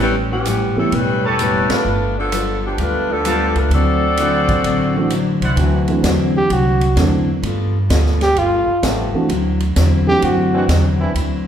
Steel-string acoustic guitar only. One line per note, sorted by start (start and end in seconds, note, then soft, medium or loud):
0.00 0.32 A2 soft
0.00 0.32 G3 soft
0.00 0.33 B3 soft
0.00 0.33 C#4 medium
0.46 0.78 A2 medium
0.46 0.79 G3 medium
0.46 0.79 B3 medium
0.46 0.79 C#4 medium
0.92 1.25 A2 soft
0.92 1.25 G3 medium
0.92 1.26 B3 soft
0.92 1.26 C#4 soft
1.40 1.72 A2 medium
1.40 1.72 G3 medium
1.40 1.72 B3 medium
1.40 1.72 C#4 medium
1.86 2.18 G3 soft
1.86 2.18 B3 soft
1.86 2.19 F4 soft
1.86 2.19 A4 medium
2.32 2.64 G3 medium
2.32 2.65 B3 medium
2.32 2.65 F4 medium
2.32 2.65 A4 medium
2.79 3.11 G3 soft
2.79 3.11 B3 soft
2.79 3.12 F4 medium
2.79 3.12 A4 soft
3.25 3.57 G3 medium
3.25 3.58 B3 medium
3.25 3.58 F4 medium
3.25 3.58 A4 medium
3.72 4.04 D3 soft
3.72 4.04 F#3 soft
3.72 4.05 C4 soft
3.72 4.05 E4 medium
4.19 4.51 D3 medium
4.19 4.51 F#3 medium
4.19 4.51 C4 medium
4.19 4.52 E4 medium
4.65 4.97 D3 medium
4.65 4.98 F#3 medium
4.65 4.98 C4 medium
4.65 4.98 E4 medium
5.12 5.44 D3 medium
5.12 5.44 F#3 medium
5.12 5.44 C4 medium
5.12 5.45 E4 medium
5.58 5.90 D3 soft
5.58 5.91 F#3 medium
5.58 5.91 C4 medium
5.58 5.91 E4 medium
6.04 6.36 D3 medium
6.04 6.37 F#3 medium
6.04 6.37 C4 medium
6.04 6.37 E4 medium
6.51 6.83 D3 soft
6.51 6.83 F#3 medium
6.51 6.84 C4 medium
6.51 6.84 E4 soft
6.97 7.29 D3 medium
6.97 7.30 F#3 medium
6.97 7.30 C4 medium
6.97 7.30 E4 medium
7.44 7.76 G3 soft
7.44 7.77 B3 medium
7.44 7.77 F4 medium
7.44 7.77 A4 medium
7.90 8.22 G3 medium
7.90 8.23 B3 medium
7.90 8.23 F4 medium
7.90 8.23 A4 medium
8.36 8.69 G3 soft
8.36 8.70 B3 soft
8.36 8.70 F4 soft
8.36 8.70 A4 medium
8.83 9.15 G3 medium
8.83 9.16 B3 medium
8.83 9.16 F4 medium
8.83 9.16 A4 medium
9.29 9.62 D3 medium
9.29 9.62 F#3 medium
9.29 9.63 C4 medium
9.29 9.63 E4 medium
9.76 10.09 D3 medium
9.76 10.09 F#3 medium
9.76 10.09 C4 medium
9.76 10.10 E4 medium
10.22 10.55 D3 soft
10.22 10.55 F#3 medium
10.22 10.56 C4 soft
10.22 10.56 E4 medium
10.69 11.02 D3 medium
10.69 11.02 F#3 medium
10.69 11.02 C4 medium
10.69 11.03 E4 medium
11.16 11.47 D3 soft
11.16 11.47 F#3 medium
11.16 11.47 C4 medium
11.16 11.47 E4 medium